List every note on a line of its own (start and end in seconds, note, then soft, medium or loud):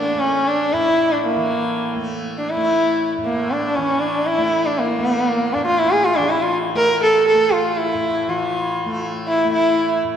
0.00 0.73 A2 medium
0.00 1.36 E3 medium
0.00 0.15 A3 medium
0.00 0.21 D4 medium
0.15 1.96 A3 medium
0.19 0.49 C#4 medium
0.48 0.74 D4 medium
0.73 3.18 A2 medium
0.73 1.14 E4 loud
1.12 1.23 D4 medium
1.26 1.96 A#3 medium
1.36 3.77 E3 medium
1.96 2.57 A3 medium
2.38 2.51 D4 medium
2.50 3.12 E4 medium
2.57 4.38 A3 medium
3.18 5.55 A2 medium
3.25 3.52 A#3 medium
3.51 3.77 D4 medium
3.76 6.17 E3 medium
3.76 4.02 C#4 medium
4.00 4.28 D4 medium
4.27 4.67 E4 loud
4.38 4.99 A3 medium
4.66 4.80 D4 medium
4.78 5.55 A#3 medium
4.99 6.75 A3 medium
5.53 7.94 A2 medium
5.53 5.65 D4 medium
5.66 5.80 F4 medium
5.79 5.92 E4 medium
5.91 6.06 G#4 loud
6.05 6.17 F4 medium
6.16 8.27 E3 medium
6.16 6.31 D4 medium
6.30 6.44 E4 medium
6.42 6.54 F4 medium
6.75 7.34 A3 medium
6.75 7.00 A#4 loud
7.03 7.26 A4 loud
7.28 7.55 A4 medium
7.34 8.86 A3 medium
7.53 7.79 F4 medium
7.77 8.31 E4 medium
7.94 10.04 A2 medium
8.27 10.17 E3 medium
8.27 9.04 F4 medium
8.86 9.45 A3 medium
9.28 9.51 E4 medium
9.45 10.17 A3 medium
9.53 9.99 E4 medium
10.04 10.17 A2 medium